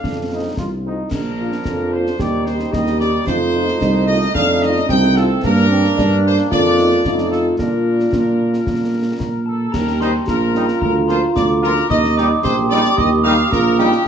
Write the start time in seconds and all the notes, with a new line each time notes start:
Already playing: D4 F5
0.04 F2, concert bass drum, snare
0.32 A3 C4 D#4 F4
0.57 C2 F4, concert bass drum, snare
0.86 A3 C4 D#4 F4
1.11 A#1 F3 D4 A#4, concert bass drum, snare, crash
1.40 A#3 D4 F4
1.52 snare
1.65 F2 F4, concert bass drum, snare
1.91 A#3 D4 F4 C5
2.07 snare
2.19 D#2 G3 D#4 G4 D5, concert bass drum, snare
2.45 G3 D#4 G4 C5, snare
2.59 snare
2.72 D#2 G4 D#5, concert bass drum, snare
2.87 snare
3.00 G3 D#4 G4 D5, snare
3.27 F2 A3 D#4 F4 C5, concert bass drum, snare
3.56 A3 D#4 F4
3.68 snare
3.81 C2 D#4, concert bass drum, snare
4.07 A3 D#4 F4 D#5
4.22 snare
4.35 F2 D4 F5, concert bass drum, snare
4.62 A3 D#4 F4 D#5, snare
4.76 snare
4.89 C2 C4 G5, concert bass drum, snare
5.03 snare
5.16 A3 D#4 F4 A4, snare
5.43 G2 A#3 D4 A#4, concert bass drum, snare, crash
5.70 C4
5.85 snare
5.97 G2 D4, concert bass drum, snare
6.26 C5
6.39 snare
6.51 F2 A#3 D4 F4 D5, concert bass drum, snare
6.78 D#4, snare
6.92 snare
7.05 F2 A3 D#4 F4, concert bass drum, snare
7.18 snare
7.30 A4, snare
7.58 A#2 A#3 D4 F4 A#4, concert bass drum, snare
8.00 snare
8.13 A#2, concert bass drum, snare
8.54 snare
8.66 A#2, concert bass drum, snare
9.19 A#2 A#4 A#5, concert bass drum, snare
9.46 A4 A5
9.72 D#2 G4 A#4 A#5, concert bass drum, snare, crash
9.88 snare
10.01 G3 A#3 D#4 G4 C5 C6, snare
10.27 A#1 F4 A#4 A#5, concert bass drum, snare
10.55 G3 A#3 D#4 G4, snare
10.68 snare
10.81 D2 A#4 A#5, concert bass drum
11.08 F3 A#3 F4 A#4 C5 C6, snare
11.35 D2 D5 D6, concert bass drum, snare
11.63 F3 A#3 F4 A#4 A#5, snare
11.76 snare
11.90 D#2 D#4 D#5 D#6, concert bass drum, snare, crash
12.04 snare
12.16 G3 A#3 D#4 G4 D5 D6, snare
12.43 A#1 G4 C5 C6, concert bass drum, snare
12.69 G3 A#3 D#4 G4 D5 D6, snare
12.85 snare
12.97 D#2 D#5 D#6, concert bass drum
13.24 G3 A#3 D#4 G4 F5 F6, snare
13.51 A#1 F4 A#4 A#5, concert bass drum, snare
13.78 G3 A#3 D#4 G4 G5, snare
13.92 snare